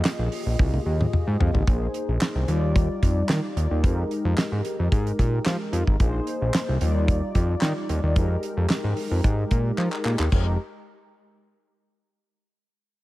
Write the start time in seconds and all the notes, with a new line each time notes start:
Already playing: A#3 F4 G4 G#4 D#5
0.05 snare, clap, closed hi-hat
0.19 A#1
0.32 open hi-hat
0.46 A#1
0.59 C2, kick, high tom
0.74 high tom
0.86 D#2
1.01 mid tom
1.13 mid tom
1.27 G#2
1.40 F2, floor tom
1.54 G#1, floor tom
1.67 A#1 A#3 D#4 G#4 C5, kick, closed hi-hat
1.94 closed hi-hat
2.08 A#1
2.21 snare, clap, closed hi-hat
2.35 C2
2.48 D#2 G3 D#4 F4 D5, closed hi-hat
2.76 kick, closed hi-hat
3.03 F2, kick, closed hi-hat
3.29 D#3, snare, clap, closed hi-hat
3.56 D#2, closed hi-hat
3.71 D#2
3.83 F2 G#3 D#4 G4 A#4, kick, closed hi-hat
4.11 closed hi-hat
4.25 F2
4.38 snare, clap, closed hi-hat
4.52 G#2
4.65 closed hi-hat
4.79 F2
4.92 G#2, kick, closed hi-hat
5.07 closed hi-hat
5.19 A#2, kick, closed hi-hat
5.46 F3, snare, clap, closed hi-hat
5.73 F2, closed hi-hat
5.87 G#1, kick
6.00 A#1 A#3 D#4 G#4 C5, kick, closed hi-hat
6.27 closed hi-hat
6.42 A#1
6.54 snare, clap, closed hi-hat
6.69 C2
6.80 D#2 F3 D#4 F4 D5, closed hi-hat
6.87 G3
7.08 kick, closed hi-hat
7.35 F2, kick, closed hi-hat
7.61 D#3, snare, clap, closed hi-hat
7.89 D#2, closed hi-hat
8.03 D#2
8.15 F2 G#3 D#4 G4 A#4, kick, closed hi-hat
8.43 closed hi-hat
8.57 F2
8.70 snare, clap, closed hi-hat
8.84 G#2
8.97 open hi-hat
9.11 F2
9.24 G#2, kick, closed hi-hat
9.51 A#2, kick, closed hi-hat
9.78 F3, clap
9.92 clap
10.05 A#2, clap
10.19 D#2, clap
10.32 F1 G#3 D#4 G4 A#4, kick, china